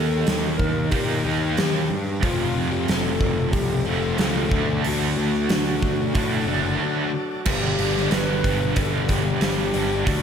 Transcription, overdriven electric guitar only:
0.00 0.89 D#3 medium
0.00 0.90 A#3 medium
0.00 0.91 D#4 medium
0.91 1.22 D#3 medium
0.91 1.23 A#3 medium
0.91 1.23 D#4 medium
1.24 1.89 D#3 medium
1.24 1.88 A#3 medium
1.24 1.88 D#4 medium
2.20 3.83 F2 medium
2.20 3.84 C3 loud
2.20 3.84 F3 loud
3.85 4.16 F2 medium
3.85 4.17 C3 medium
3.85 4.16 F3 medium
4.17 4.49 F2 medium
4.17 4.49 C3 medium
4.17 4.50 F3 medium
4.50 6.12 D3 medium
4.50 6.13 A3 medium
4.50 6.14 D4 loud
6.14 6.45 D3 medium
6.14 6.46 A3 medium
6.14 6.46 D4 medium
6.47 7.12 D3 medium
6.47 7.11 A3 medium
6.47 7.11 D4 medium
7.46 8.10 G2 medium
7.46 8.11 D3 loud
7.46 8.11 G3 loud
8.11 8.42 G2 medium
8.11 8.42 D3 medium
8.11 8.42 G3 medium
8.43 8.74 G2 medium
8.43 8.75 D3 medium
8.43 8.75 G3 loud
8.75 9.40 G2 medium
8.75 9.40 D3 loud
8.75 9.41 G3 loud
9.41 9.72 G2 medium
9.41 9.73 D3 medium
9.41 9.73 G3 medium
9.73 10.04 G2 medium
9.73 10.04 D3 medium
9.73 10.05 G3 loud
10.05 10.22 D3 medium
10.05 10.22 A3 medium
10.05 10.22 D4 medium

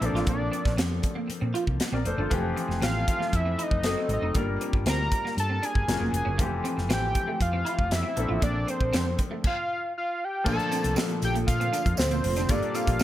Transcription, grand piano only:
0.01 2.01 F3 medium
0.01 2.02 A#3 medium
0.01 2.02 C4 soft
0.01 2.02 D4 soft
0.01 1.77 A4 medium
1.94 2.06 A#4 soft
1.94 2.05 D5 medium
2.06 2.18 A4 medium
2.06 2.18 C5 medium
2.19 2.43 F4 medium
2.19 2.43 A4 medium
2.30 3.81 E3 medium
2.30 3.80 F3 medium
2.30 3.81 A3 medium
2.30 3.81 C4 medium
2.30 3.82 G4 medium
3.84 4.35 F#3 medium
3.84 4.35 A3 medium
3.84 4.35 C4 medium
3.84 4.35 D#4 soft
3.84 4.36 A4 medium
4.35 5.85 G3 medium
4.35 5.85 A#3 medium
4.35 5.85 D4 medium
4.35 5.85 F4 medium
4.35 5.86 A#4 medium
5.88 6.39 F#3 medium
5.88 6.39 A#3 soft
5.88 6.39 C#4 soft
5.88 6.39 F4 soft
5.88 6.39 G#4 medium
6.39 8.14 E3 medium
6.39 8.13 F3 medium
6.39 8.14 A3 medium
6.39 8.14 C4 medium
6.39 8.15 G4 medium
8.16 9.41 F3 medium
8.16 9.42 A#3 soft
8.16 9.42 C4 soft
8.16 9.42 D4 soft
8.16 9.43 A4 medium
10.44 12.45 F3 medium
10.44 12.45 A3 medium
10.44 12.45 A#3 medium
10.44 12.46 D4 medium
10.44 10.53 G#4 medium
10.53 12.49 A4 medium
12.49 13.03 G3 medium
12.49 13.03 A#3 medium
12.49 13.03 D4 medium
12.49 13.03 F4 medium
12.49 13.03 A4 medium

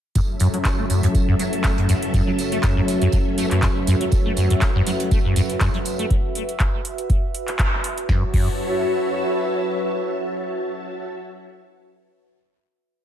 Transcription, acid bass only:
0.15 0.20 F#2 loud
0.40 0.48 F#2 medium
0.54 0.57 F#3 medium
0.79 0.85 A3 medium
0.90 1.01 F#2 medium
1.03 1.07 F#2 medium
1.28 1.34 F#2 loud
1.39 1.44 F#3 medium
1.64 1.72 A3 medium
1.78 1.87 F#2 medium
1.89 1.94 F#2 loud
2.14 2.21 F#2 loud
2.27 2.31 F#3 medium
2.52 2.58 A3 medium
2.63 2.75 F#2 medium
2.77 2.81 F#2 loud
3.02 3.08 F#2 medium
3.13 3.17 F#3 medium
3.38 3.45 A3 medium
3.51 3.61 F#2 medium
3.63 3.67 F#2 loud
3.87 3.95 F#2 loud
4.01 4.05 F#3 medium
4.26 4.32 A3 medium
4.37 4.48 F#2 medium
4.50 4.54 F#2 medium
4.75 4.81 F#2 loud
4.87 4.91 F#3 medium
5.11 5.19 A3 medium
5.25 5.34 F#2 medium
5.36 5.41 F#2 loud
5.61 5.68 F#2 loud
5.74 5.78 F#3 medium
5.99 6.05 A3 medium
8.09 8.24 F#2 medium
8.34 8.48 F#2 medium

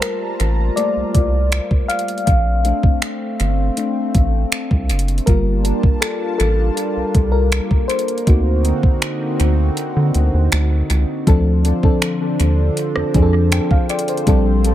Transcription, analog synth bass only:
0.40 0.70 A1 medium
0.97 1.04 C2 soft
1.15 1.60 C2 medium
2.27 2.72 A#1 loud
2.84 2.91 G1 medium
3.40 3.70 G1 medium
4.15 4.45 A1 medium
4.71 4.92 C2 medium
4.90 5.20 F#1 medium
5.28 5.73 G1 medium
5.84 5.91 A1 medium
6.40 6.70 A1 medium
6.97 7.04 C2 soft
7.15 7.60 C2 loud
8.27 8.72 D2 loud
8.84 8.91 D2 soft
9.40 9.70 D2 medium
9.96 10.11 D3 loud
10.15 10.30 D2 medium
10.34 10.49 D#2 medium
10.53 10.83 D2 medium
10.90 11.05 C#2 medium
11.27 11.72 D2 loud
11.84 11.91 D#2 soft
12.40 12.70 D#2 medium
12.96 13.04 F2 soft
13.15 13.60 F2 medium
14.27 14.72 A#1 loud

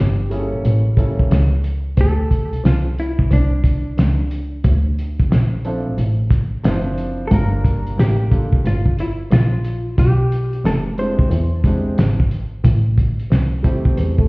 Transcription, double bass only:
0.00 0.49 G1 medium
0.52 0.61 A1 soft
0.64 1.28 A1 medium
1.30 1.94 C#2 medium
1.97 2.49 D2 loud
2.52 2.61 C2 soft
2.64 3.16 C2 medium
3.19 3.28 C2 soft
3.31 3.94 C2 medium
3.98 4.61 C#2 medium
4.64 5.16 D2 loud
5.19 5.28 A#1 soft
5.31 5.83 A#1 medium
5.86 5.95 A1 soft
5.98 6.61 A1 medium
6.64 7.28 F#1 medium
7.31 7.94 G1 loud
7.98 8.61 A1 medium
8.65 9.28 G1 medium
9.31 9.94 A#1 medium
9.98 10.61 B1 loud
10.64 11.28 F1 medium
11.30 11.94 E2 loud
11.97 12.61 G#1 medium
12.64 13.28 A1 loud
13.31 13.94 C2 medium
13.97 14.28 E2 medium

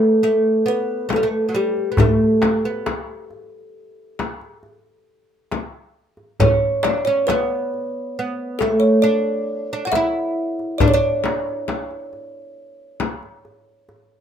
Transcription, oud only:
0.00 0.22 A3 medium
0.23 0.65 A3 medium
0.66 1.08 B3 medium
1.09 1.16 A3 medium
1.16 1.23 G3 medium
1.23 1.54 A3 medium
1.49 1.55 F#3 soft
1.55 1.91 G3 medium
1.92 1.99 B3 medium
2.00 2.65 A3 medium
2.65 2.86 B3 medium
6.40 6.84 C#4 medium
6.84 7.07 D4 medium
7.07 7.29 C#4 medium
7.30 8.18 B3 medium
8.19 8.61 B3 medium
8.62 9.07 A3 medium
9.04 9.72 D4 medium
9.73 9.86 D4 medium
9.87 9.93 F#4 medium
9.95 10.81 E4 medium
10.81 10.93 D4 medium
10.94 14.21 D4 medium

